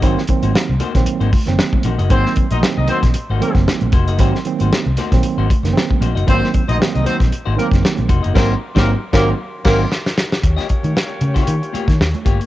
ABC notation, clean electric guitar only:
X:1
M:4/4
L:1/16
Q:"Swing 16ths" 1/4=115
K:Ab
V:1 name="Clean electric guitar"
[B,E_Gc] z2 [B,EGc] z2 [B,EGc] z2 [B,EGc] z4 [B,EGc] [B,EGe] | [B,E_Gc] z2 [B,EGc] z2 [B,EGc] z2 [B,EGc] z4 [B,EGc] [B,EGe] | [B,E_Gc] z2 [B,EGc] z2 [B,EGc] z2 [B,EGc] z4 [B,EGc] [B,EGe] | [B,E_Gc]2 z [B,EGc] z2 [B,EGc] z2 [B,EGc] z4 [B,EGc] [B,EGe] |
[B,E_Gc]2 z [B,EGc]2 z [B,EGc]2 z2 [B,EGc]2 z4 | z [B,FGe] z4 z [B,FGd]2 z [B,FGd] z3 [B,FGd] z |]